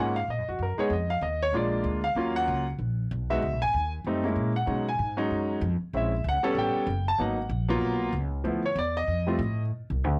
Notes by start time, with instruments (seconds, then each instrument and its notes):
Already playing: upright bass G#2, grand piano G#3 A#3 C#4 F4
0.00 grand piano F#5
0.16 grand piano F5
0.28 upright bass A#2, grand piano D#5
0.38 upright bass F#2
0.49 upright bass F2, grand piano F#4
0.59 upright bass F#2, grand piano A#4
0.78 grand piano G#3 B3 D#4 G#4 C#5, muted upright bass stroke
0.90 upright bass F2, grand piano D#5
1.10 grand piano F5
1.21 upright bass D#2, grand piano D#5
1.42 grand piano C#5
1.53 upright bass A#1, grand piano G#3 A#3 D4 F4
1.57 grand piano D5
1.84 upright bass D2
2.04 grand piano F5
2.15 upright bass D#2, grand piano F#3 A#3 C#4 F4
2.36 grand piano F#5
2.48 upright bass C#2
2.79 upright bass A#1
3.11 upright bass B1
3.30 grand piano G#3 B3 D#4 F#4 E5
3.42 upright bass C#2
3.52 upright bass B1
3.62 upright bass G#1, grand piano G#5
3.74 upright bass D#2
4.04 upright bass F#2, grand piano G3 A3 C4 D#4
4.24 grand piano G#3 A#3 C#4 E4
4.36 upright bass A#2
4.56 grand piano F#5
4.66 upright bass B2, grand piano F#3 G#3 C#4 D#4
4.89 grand piano G#5
4.99 upright bass G#2
5.17 grand piano F#3 G#3 C#4 D#4
5.31 upright bass F#2
5.61 upright bass F2
5.81 muted upright bass stroke
5.93 upright bass A#1, grand piano G#3 C4 C#4 E4 E5
6.24 upright bass C#2
6.29 grand piano F#5
6.43 grand piano G3 B3 C#4 A4
6.55 upright bass A1, grand piano G5
6.75 muted upright bass stroke
6.87 upright bass F#1
7.08 grand piano A5
7.18 upright bass G#1, grand piano F#3 A#3 B3 D#4 F#5
7.49 upright bass A#1
7.68 grand piano F#3 A#3 B3 F4
7.81 upright bass B1
8.13 upright bass C#2
8.44 upright bass D2, grand piano F3 A3 B3 E4
8.65 grand piano C#5
8.75 upright bass E2, grand piano D5
8.97 grand piano D#5
9.07 upright bass F2
9.27 grand piano G3 A3 C4 F4
9.39 upright bass A2
9.90 upright bass C2
10.04 upright bass D2